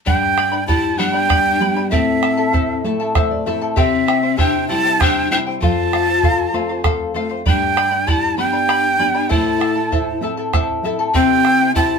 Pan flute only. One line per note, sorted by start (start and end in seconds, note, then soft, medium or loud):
0.06 0.64 D4 medium
0.67 1.00 E4 medium
0.98 1.91 D4 medium
1.92 2.80 C4 medium
3.77 4.39 C4 medium
4.38 4.69 D4 medium
4.70 5.03 E4 medium
5.01 5.31 D4 medium
5.31 5.38 D4 medium
5.61 6.80 F4 medium
7.48 8.09 D4 medium
8.07 8.37 E4 medium
8.38 9.32 D4 medium
9.30 10.22 E4 medium
11.14 11.71 C4 medium
11.75 11.99 E4 medium